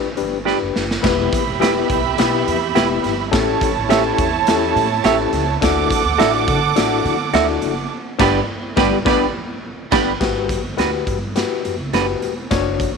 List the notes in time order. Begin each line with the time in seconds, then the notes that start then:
0.04 muted upright bass stroke
0.17 G1 D4 G4 B4, closed hi-hat
0.45 D4 G4 B4, snare
0.62 F#1
0.76 F#1, snare
0.91 snare
1.03 E1 B3 E4 G4 B4 E5 B5, kick, snare, crash
1.33 kick, closed hi-hat
1.47 E1
1.60 B3 E4 G4 B4, snare, closed hi-hat
1.90 B1, kick, closed hi-hat
2.18 B1 B3 E4 G4 B4, snare, closed hi-hat
2.47 E2, closed hi-hat
2.75 E1 B3 E4 G4 B4, snare, closed hi-hat
3.04 G1, snare, closed hi-hat
3.31 A1 C#4 E4 G4 A4 C#5 A5, kick, snare, closed hi-hat
3.61 kick, closed hi-hat
3.76 A1
3.89 C#4 E4 G4 A4 C#5 E5, snare, closed hi-hat
4.18 E2, kick, closed hi-hat
4.47 E2 C#4 E4 G4 A4, snare, closed hi-hat
4.76 A2, closed hi-hat
5.04 A1 C#4 E4 G4 A4 C#5 E5, snare, closed hi-hat
5.33 C#2, snare, closed hi-hat
5.61 D2 D4 E4 F#4 A4 F#5 D6, kick, snare, closed hi-hat
5.90 kick, closed hi-hat
6.05 D2
6.18 A1 D4 E4 F#4 A4 E5, snare, closed hi-hat
6.48 D3, kick, closed hi-hat
6.76 A1 D4 E4 F#4 A4, snare, closed hi-hat
7.05 D3, closed hi-hat
7.33 D2 D4 E4 F#4 A4 E5, snare, closed hi-hat
7.62 F#1, closed hi-hat
8.19 G1 B3 D4 G4 B4 D5 B5, kick, snare, crash
8.77 G1 B3 D4 G4 B4 D5 B5, kick, snare
9.05 G1 B3 D4 G4 B4 D5 B5, kick, snare
9.91 G1 B3 D4 G4 B4 D5 B5, kick, snare, crash
10.20 G1 F#4 G4 B4, kick, snare, crash
10.49 kick, closed hi-hat
10.63 G1
10.77 D2 D4 F#4 G4 B4, snare, closed hi-hat
11.07 G2, kick, closed hi-hat
11.36 F#4 G4 B4, snare, closed hi-hat
11.64 F#2, closed hi-hat
11.78 C#2
11.93 F#1 D4 F#4 G4 B4, snare, closed hi-hat
12.21 E1, closed hi-hat
12.51 F#1 D4 F#4 C#5, kick, snare, closed hi-hat
12.80 kick, closed hi-hat
12.94 F#1